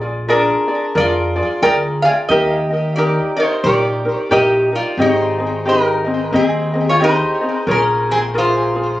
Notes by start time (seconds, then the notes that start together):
Already playing: A#1
0.01 F4 G#4 D5
0.28 D4 F4 G#4 A#4 D5
0.68 F4 G#4 D5
0.95 F2 F4 G#4 A#4 D5
1.00 F4
1.36 F4 G#4 D5
1.62 D2 F4 G#4 A#4 D5 G5
2.02 F4 G#4 D5 F5
2.29 D#2 D#4 G4 A#4 D#5
2.70 D#4 A#4 D#5
2.96 D#4 G4 A#4 D5
3.37 D#4 A#4 C5 D#5
3.64 A#1 D#4 G4 A#4 D5
4.05 D#4 A#4
4.31 A#1 D#4 G4 A#4 D#5
4.72 D#4 F4 A#4 D5
4.97 G#1 C4 G4 G#4 C5 D#5
5.02 D#4
5.38 C4 G#4 D#5
5.65 C4 G4 G#4 A#4 D#5
5.69 D#4
6.05 C4 G#4 D#5
6.33 D#2 C4 G#4 D#5
6.74 C4 G#4 D#5
6.89 F4 C#5
6.99 C4 G4 G#4 D#5
7.04 D#4 C5
7.41 C4 G#4 D#5
7.67 A#1 F4 G#4 A#4 C#5
7.71 C#4 A#4
8.09 C4 F4 G#4
8.34 F4 G#4 A#4
8.39 C5
8.75 F4 G#4